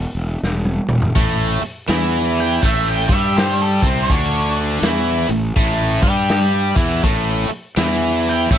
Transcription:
0.15 E1
0.43 E1, snare
0.65 high tom
0.89 E1, mid tom
1.02 floor tom
1.15 A1 A2 A3, kick, open hi-hat
1.62 muted fingered electric bass stroke, muted overdriven electric guitar stroke, open hi-hat
1.88 E2 E3 E4, snare, open hi-hat
2.36 G5, open hi-hat
2.62 A1 A2 A3 E5, kick, open hi-hat
2.88 G5
3.07 G2 G3 G4, kick, open hi-hat
3.13 E5
3.37 C5, snare, open hi-hat
3.62 A4
3.82 C2 C3 C4, kick, open hi-hat
3.87 C5
4.10 D2 D3 D4 C#5, kick, open hi-hat
4.56 open hi-hat
4.82 E2 E3 E4, snare, open hi-hat
5.29 A1 A2, open hi-hat
5.56 A1 A2 A3, kick, open hi-hat
6.02 G2 G3 G4, kick, open hi-hat
6.29 snare, open hi-hat
6.75 E2 E3 E4, kick, open hi-hat
7.03 A1 A2 A3, kick, open hi-hat
7.49 muted fingered electric bass stroke, muted overdriven electric guitar stroke, open hi-hat
7.77 E2 E3 E4, snare, open hi-hat
8.23 open hi-hat
8.29 G5
8.51 A1 A2 A3 E5, kick, open hi-hat

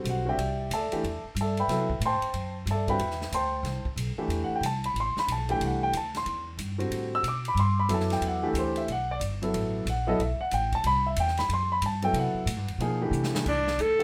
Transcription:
Already playing: D3 G3 C4
0.04 B1, hi-hat pedal, ride
0.09 F#4 F#5
0.25 D3 G3 C4 F#4 G4 D5 E5 G5
0.37 C2, ride
0.70 D2 A4 D5 A5, hi-hat pedal, ride
0.75 E5
0.92 E3 A3 D4 G4, muted upright bass stroke, ride
1.04 E2, ride
1.24 muted upright bass stroke
1.35 G2, hi-hat pedal, ride
1.41 A4 D5 E5 A5
1.57 B4 E5 G5 B5, ride
1.67 C3 F#3 B3 E4 A4, snare, ride
1.90 kick
2.00 A2, hi-hat pedal, ride
2.06 C5 G5 A5 C6
2.21 muted upright bass stroke, ride
2.33 F#2, ride
2.66 G2, hi-hat pedal, ride
2.70 A4 D5 E5 A5
2.88 D3 G3 C4 F#4 B4 E5 G5 B5, kick, ride
2.98 E2, ride
3.11 snare
3.22 snare
3.32 D2 C5 G5 A5 C6, hi-hat pedal, ride
3.63 C2, snare, ride
3.85 muted upright bass stroke, kick
3.96 B1, hi-hat pedal, ride
4.17 E3 A3 D4 G4, muted upright bass stroke
4.28 E2, ride
4.44 F#5
4.49 muted upright bass stroke
4.56 G5
4.61 C2, hi-hat pedal, ride
4.66 A5
4.84 B5, ride
4.94 A1, ride
5.00 C6
5.15 B5, muted upright bass stroke, snare
5.28 B1, hi-hat pedal, ride
5.32 A5
5.49 E3 A3 D4 G4 G5, ride
5.60 C2, ride
5.65 F#5
5.83 G5
5.93 D2 A5, hi-hat pedal, ride
6.15 C6, snare, ride
6.26 E2, ride
6.57 G2, hi-hat pedal, ride
6.78 D3 G3 C4 F#4, ride
6.90 A2, ride
7.15 E6
7.23 B2, hi-hat pedal, ride
7.28 D6
7.45 B5, ride
7.55 G2, ride
7.59 C6
7.80 B5
7.89 F#2 F#3 B3 E4 A4, hi-hat pedal, ride
7.94 A5
8.00 snare
8.10 G5, snare, ride
8.21 E2, ride
8.27 F#5
8.43 E3 A3 D4 G4
8.47 A4
8.53 D2, hi-hat pedal, ride
8.59 C5
8.76 E5, ride
8.88 B1, ride
8.92 F#5
9.11 D5
9.19 G1, hi-hat pedal, ride
9.42 F#3 B3 E4 A4, ride
9.54 A1, ride
9.85 A#1, hi-hat pedal, ride
9.90 F#5
10.07 F#3 B3 E4 A4 D#5
10.19 B1 E5, ride
10.40 F#5, muted upright bass stroke
10.51 A1 G5, hi-hat pedal, ride
10.72 A5, kick, ride
10.84 C2 B5, ride
11.07 E5
11.16 E2 G5, hi-hat pedal, ride
11.28 snare
11.37 B5, snare, ride
11.49 F#2, ride
11.53 C6
11.72 B5
11.81 G2, hi-hat pedal, ride
11.86 A5
12.02 F#3 B3 E4 A4 G5, ride
12.13 C3, ride
12.19 F#5
12.34 muted upright bass stroke
12.46 A2, hi-hat pedal, ride
12.56 G2
12.68 E2, ride
12.78 B2 F3 A#3 D#4 G#4, ride
13.01 E3 A3 D4 G4
13.11 C3, hi-hat pedal
13.24 snare
13.33 E3 A3 D4 G4, snare
13.46 C2 D4, kick, crash
13.67 snare
13.78 D2 A4, hi-hat pedal, ride
13.99 E3 A3 D4 G4, ride

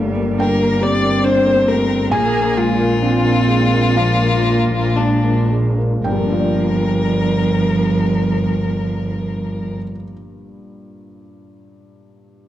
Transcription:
Already playing: G1 G2 G3 A3 A#3 D4 G4 F5
0.17 A#3
0.38 D3 A#3 A#4 G5
0.60 A#3
0.81 C4 G4 D5
1.03 A#3
1.23 D4 C5
1.45 A#3
1.67 A3 A#4
1.88 A#3
2.11 A#1 A#2 A#3 G#4 G#5
2.33 A#3
2.57 G#3 F4
2.80 A#3
3.01 C4 D4
3.24 A#3
3.48 G#3
3.72 A#3
3.96 F3 A#3 F5
4.22 A#3
4.47 F4
4.71 A#3
4.96 G#3 D4
5.24 A#3
5.50 G#3
5.78 A#3
6.04 G1 G2 F3 A#4 G5
6.12 G3
6.18 A#3
6.26 D4
6.32 F4
6.40 D5

